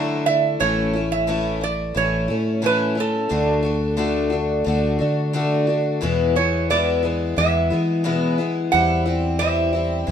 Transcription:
Already playing: D3 F#3 A3 D4 E4
0.26 A3 D4 E4 E5
0.60 A1 A2 E3 A3 C#4 E4 C#5
0.93 A3 C#4 E4
1.12 E5
1.27 A2 E3 A3 C#4 E4
1.61 A3 E4 D5
1.94 A1 E3 A3 C#4 E4 C#5
2.28 A2 A3 C#4 E4
2.62 A2 E3 A3 C#4 E4
2.66 B4
2.95 A3 C#4 E4
3.00 A4
3.29 D2 D3 A3 D4 F#4
3.63 A3 D4 F#4
3.97 D3 A3 D4 F#4
4.30 A3 D4 F#4
4.64 D2 D3 A3 D4 F#4
4.99 D3 A3 D4 F#4
5.33 D3 A3 D4 F#4
5.67 A3 D4 F#4
6.01 E2 B2 E3 G#3 B3 E4
6.36 E3 G#3 B3 E4 C#5
6.70 E2 B2 E3 G#3 B3 E4 D5
7.03 E3 G#3 B3 E4
7.36 E2 E3 G#3 B3 E4 E5
7.70 E3 G#3 B3 E4
8.04 E2 B2 E3 G#3 B3 E4
8.38 E3 G#3 B3 E4
8.72 E2 E3 G3 C4 E4 F#5
9.06 G3 C4 E4
9.39 E3 G3 C4 E4 E5
9.73 G3 C4 E4
10.07 E2 E3 G3

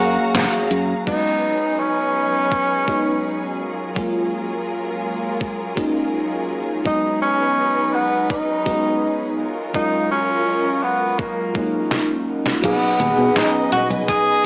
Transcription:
Already playing: F#3 F#4 F5 G#5 A#5
0.00 F#2 A#3 C#4 G#4 F5
0.17 muted fingered electric bass stroke
0.35 F#1, snare, closed hi-hat
0.53 closed hi-hat
0.71 F#2, closed hi-hat
1.06 F#3 G#3 B3 C#4 D#4 G#4 B4, kick, crash
1.79 C#4
2.52 kick
2.87 F#3 G#3 B3 C#4 D#4, kick
3.60 F4 A#4
3.95 F#3 G#3 A#3 C#4 F4, kick
5.41 kick
5.75 F#3 G#3 A#3 C#4 D#4, kick
6.84 F#3 G#3 B3 C#4 D#4 B4, kick
7.22 C#4
7.94 B3
8.30 D#4, kick
8.65 F#3 G#3 B3 C#4 D#4, kick
9.39 F#3 F4 A#4
9.73 F#3 G#3 C#4 D#4 F4 A#4, kick
10.11 C#4
10.83 B3
11.19 A#3, kick
11.53 F#3 G#3 A#3 C#4 D#4, kick
11.91 snare
12.46 snare
12.62 B1 F#3 B3 C#4 D#4 G#4 B4 D#5 G#5, kick, closed hi-hat, crash, high conga
13.00 D#2, closed hi-hat, high conga
13.18 B2, high conga
13.36 D#4, snare, closed hi-hat, high conga
13.72 F#4, closed hi-hat, high conga
13.90 B1, closed hi-hat, high conga
14.08 G#4, kick, closed hi-hat, high conga

